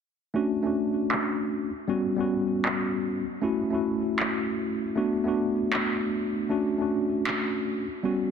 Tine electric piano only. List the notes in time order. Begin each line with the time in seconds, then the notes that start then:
0.34 A3 C#4 D4 F#4
0.63 A3 C#4 D4
0.67 F#4
1.88 G3 B3 C#4 F#4
2.16 G3 B3 C#4
2.20 F#4
3.41 A3 C#4 E4 F#4
3.70 A3 C#4 E4
3.74 F#4
4.95 A3 B3 D4 F#4
5.24 A3 B3 D4
5.28 F#4
6.49 A3 C#4 D4 F#4
6.78 A3 C#4 D4
6.82 F#4
8.03 G3 B3 C#4 F#4